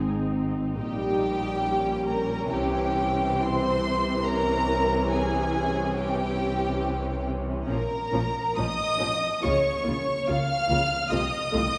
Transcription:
Already playing: G#1 G#2 C4 D#4
0.78 A#1 A#2 G3 G4 G5
1.65 C#4
2.08 A#4 A#5
2.50 C2 C3 E3 G4 G5
3.41 C4 C5 C6
4.26 C#4 A#4 A#5
5.09 G#4 G#5
5.97 G4 G5
7.66 A#1 A#2 F3 C#4 A#4 A#5
8.12 A#1 A#2 F3 C#4
8.56 A#1 A#2 F3 C#4 D#5 D#6
8.99 A#1 A#2 F3 C#4
9.41 C#2 C#3 A#3 F4 C#5 C#6
9.84 C#2 C#3 A#3 F4
10.27 C#2 C#3 A#3 F4 F5 F6
10.69 C#2 C#3 A#3 F4
11.11 C2 C3 A3 F4 D#5 D#6
11.53 C2 C3 A3 F4

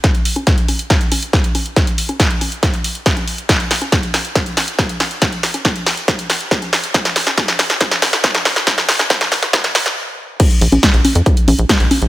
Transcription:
0.04 kick, snare, closed hi-hat
0.15 closed hi-hat
0.25 open hi-hat
0.36 closed hi-hat, high conga
0.47 kick, snare, closed hi-hat
0.58 closed hi-hat
0.68 open hi-hat, high conga
0.79 closed hi-hat
0.90 kick, snare, closed hi-hat
1.01 closed hi-hat
1.12 open hi-hat, high conga
1.23 closed hi-hat
1.33 kick, snare, closed hi-hat
1.44 closed hi-hat
1.55 open hi-hat, high conga
1.66 closed hi-hat
1.76 kick, snare, closed hi-hat
1.87 closed hi-hat
1.98 open hi-hat
2.09 closed hi-hat, high conga
2.20 kick, snare, closed hi-hat
2.30 closed hi-hat
2.41 open hi-hat, high conga
2.52 closed hi-hat
2.63 kick, snare, closed hi-hat
2.74 closed hi-hat
2.84 open hi-hat
2.95 closed hi-hat
3.06 kick, snare, closed hi-hat
3.17 closed hi-hat, high conga
3.28 open hi-hat
3.38 closed hi-hat
3.49 kick, snare, closed hi-hat
3.60 closed hi-hat
3.71 snare, open hi-hat
3.81 closed hi-hat, high conga
3.92 kick, snare, closed hi-hat
4.03 closed hi-hat
4.14 snare, open hi-hat, high conga
4.25 closed hi-hat
4.35 kick, snare, closed hi-hat
4.46 closed hi-hat
4.57 snare, open hi-hat, high conga
4.68 closed hi-hat
4.79 kick, snare, closed hi-hat
4.89 closed hi-hat
5.00 snare, open hi-hat, high conga
5.11 closed hi-hat
5.22 kick, snare, closed hi-hat
5.32 closed hi-hat
5.43 snare, open hi-hat
5.54 closed hi-hat, high conga
5.65 kick, snare, closed hi-hat
5.76 closed hi-hat
5.86 snare, open hi-hat
5.97 closed hi-hat
6.08 kick, snare, closed hi-hat
6.19 closed hi-hat
6.30 snare, open hi-hat
6.41 closed hi-hat
6.51 kick, snare, closed hi-hat
6.62 closed hi-hat, high conga
6.73 snare, open hi-hat
6.84 closed hi-hat
6.94 kick, snare, closed hi-hat
7.05 snare, closed hi-hat
7.16 snare, open hi-hat
7.27 snare, closed hi-hat, high conga
7.38 kick, snare, closed hi-hat
7.48 snare, closed hi-hat
7.59 snare, open hi-hat, high conga
7.70 snare, closed hi-hat
7.81 kick, snare, closed hi-hat
7.91 snare, closed hi-hat
8.02 snare, open hi-hat, high conga
8.13 snare, closed hi-hat
8.24 kick, snare, closed hi-hat
8.35 snare, closed hi-hat
8.45 snare, open hi-hat, high conga
8.56 snare, closed hi-hat
8.67 kick, snare, closed hi-hat
8.78 snare, closed hi-hat
8.89 snare, open hi-hat
8.99 snare, closed hi-hat, high conga
9.10 kick, snare, closed hi-hat
9.21 snare, closed hi-hat
9.32 snare, open hi-hat, high conga
9.43 snare, closed hi-hat
9.53 kick, snare, closed hi-hat
9.64 snare, closed hi-hat
9.75 snare, open hi-hat
9.86 snare, closed hi-hat
10.40 kick, closed hi-hat, crash
10.51 closed hi-hat
10.61 A#1, open hi-hat
10.72 A#1, closed hi-hat, high conga
10.83 kick, snare, closed hi-hat
10.94 A#1, closed hi-hat
11.05 open hi-hat, high conga
11.15 F2, closed hi-hat
11.26 kick, closed hi-hat
11.37 closed hi-hat
11.48 A#1, open hi-hat, high conga
11.59 A#1, closed hi-hat
11.69 kick, snare, closed hi-hat
11.80 A#1, closed hi-hat
11.91 open hi-hat, high conga
12.02 A#1, closed hi-hat

